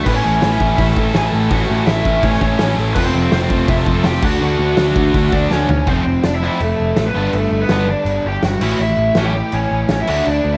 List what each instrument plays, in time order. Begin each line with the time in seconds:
0.05 picked electric bass A1, distorted electric guitar A2 E3 A3 C#4 E4, overdriven electric guitar B3 B4, kick, open hi-hat, crash
0.14 overdriven electric guitar C#4 C#5
0.24 picked electric bass A1, distorted electric guitar A2 E3 A3
0.41 picked electric bass A1, distorted electric guitar A2 E3 A3, overdriven electric guitar C#4 C#5, snare, open hi-hat
0.60 picked electric bass A1, distorted electric guitar A2 E3 A3, kick
0.77 picked electric bass A1, distorted electric guitar A2 E3 A3, overdriven electric guitar E4 E5, kick, open hi-hat
0.87 overdriven electric guitar A4 A5
0.97 picked electric bass A1, distorted electric guitar A2 E3 A3, kick
1.15 picked electric bass A1, distorted electric guitar A2 E3 A3, overdriven electric guitar G#4 G#5, snare, open hi-hat
1.25 overdriven electric guitar A4 A5
1.33 picked electric bass A1, distorted electric guitar A2 E3 A3
1.50 picked electric bass A1, distorted electric guitar A2 E3 A3 C#4 E4, overdriven electric guitar F#4 F#5, kick, open hi-hat
1.69 picked electric bass A1, distorted electric guitar A2 E3 A3
1.87 picked electric bass A1, distorted electric guitar A2 E3 A3, overdriven electric guitar E4 E5, snare, open hi-hat
2.05 picked electric bass A1, distorted electric guitar A2 E3 A3, kick
2.23 picked electric bass A1, distorted electric guitar A2 E3 A3, overdriven electric guitar C#4 C#5, kick, open hi-hat
2.33 overdriven electric guitar C#4 C#5
2.40 picked electric bass A1, distorted electric guitar A2 E3 A3, overdriven electric guitar C#4 C#5, kick
2.59 picked electric bass A1, distorted electric guitar A2 E3 A3, snare, open hi-hat
2.78 picked electric bass A1, distorted electric guitar A2 E3 A3
2.94 picked electric bass F1, distorted electric guitar F2 C3 F3 A3 C4, overdriven electric guitar B3 B4, kick, crash
2.98 distorted electric guitar F3 F4
3.04 overdriven electric guitar C4 C5
3.14 picked electric bass F1, distorted electric guitar F2 C3 F3
3.32 picked electric bass F1, distorted electric guitar F2 C3 F3, overdriven electric guitar C4 C5, snare, open hi-hat
3.50 picked electric bass F1, distorted electric guitar F2 C3 F3, kick
3.68 picked electric bass F1, distorted electric guitar F2 C3 F3, overdriven electric guitar E4 E5, kick, open hi-hat
3.78 overdriven electric guitar A4 A5
3.86 picked electric bass F1, distorted electric guitar F2 C3 F3, kick
4.04 picked electric bass F1, distorted electric guitar F2 C3 F3, overdriven electric guitar G4 G5, snare, open hi-hat
4.22 picked electric bass D2, distorted electric guitar D3 A3 D4 F#4, overdriven electric guitar F#4 F#5, kick, crash
4.41 picked electric bass D2, distorted electric guitar D3 A3 D4
4.59 picked electric bass D2, distorted electric guitar D3 A3 D4
4.77 picked electric bass D2, distorted electric guitar D3 A3 D4, snare, open hi-hat
4.96 picked electric bass D2, distorted electric guitar D3 A3 D4, kick
5.14 picked electric bass D2, distorted electric guitar D3 A3 D4, kick, open hi-hat
5.32 picked electric bass D2, distorted electric guitar D3 A3 D4, overdriven electric guitar D4 D5, kick
5.51 picked electric bass D2, distorted electric guitar D3 A3 D4, overdriven electric guitar C#4 C#5, snare
5.69 picked electric bass D2, distorted electric guitar D3 A3 D4, floor tom
5.87 picked electric bass F1, distorted electric guitar F2 C3 F3 A3 C4, overdriven electric guitar C4 C5, kick, crash
5.91 distorted electric guitar F3
6.06 picked electric bass F1
6.24 picked electric bass F1, overdriven electric guitar D4 D5, snare, crash
6.34 overdriven electric guitar E4 E5
6.43 distorted electric guitar F2 C3 F3 A3 C4
6.60 picked electric bass F1, distorted electric guitar F2 C3 F3, overdriven electric guitar A3 A4, crash
6.80 picked electric bass F1
6.96 picked electric bass A1, overdriven electric guitar A3 A4, snare, crash
7.07 overdriven electric guitar B3 B4
7.15 picked electric bass G1, distorted electric guitar G2 D3 G3 B3 D4
7.33 picked electric bass G1, overdriven electric guitar A3 A4, crash
7.51 picked electric bass G1
7.62 overdriven electric guitar B3 B4
7.69 picked electric bass G1, distorted electric guitar G2 D3 G3 B3, snare, crash
7.73 distorted electric guitar D4
7.88 distorted electric guitar G2 D3 G3, overdriven electric guitar D4 D5
8.05 picked electric bass G1, crash
8.25 picked electric bass G1, overdriven electric guitar G4 G5
8.43 picked electric bass G1, overdriven electric guitar F#4 F#5, snare, crash
8.61 picked electric bass A1, distorted electric guitar A2 E3 A3 C#4 E4, crash
8.79 picked electric bass A1, overdriven electric guitar E4 E5, crash
8.97 picked electric bass A1
9.15 picked electric bass A1, distorted electric guitar A2 E3 A3 C#4, overdriven electric guitar F#4 F#5, snare, crash
9.19 distorted electric guitar E4
9.26 overdriven electric guitar G4 G5
9.35 distorted electric guitar A2 E3 A3
9.52 picked electric bass A1, overdriven electric guitar C#4 C#5, crash
9.71 picked electric bass A1
9.89 picked electric bass A1, overdriven electric guitar C#4 C#5, snare, crash
10.00 overdriven electric guitar E4 E5
10.07 picked electric bass D2, distorted electric guitar D3 A3 D4 F#4, crash
10.25 picked electric bass D2, overdriven electric guitar D4 D5, crash
10.45 picked electric bass D2
10.53 overdriven electric guitar E4 E5